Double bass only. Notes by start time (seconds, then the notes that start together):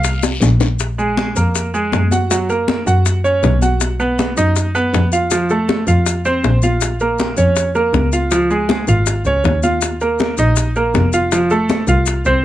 Already playing: C2
0.41 A#1
1.36 F2
1.93 F#2
2.86 F#2
3.43 B1
4.37 F#2
4.93 F2
5.87 F2
6.43 A#1
7.37 F2
7.93 C#2
8.88 G#1
9.25 C#2
9.44 D#2
10.38 A#1
10.94 F1
11.88 C2
12.25 C2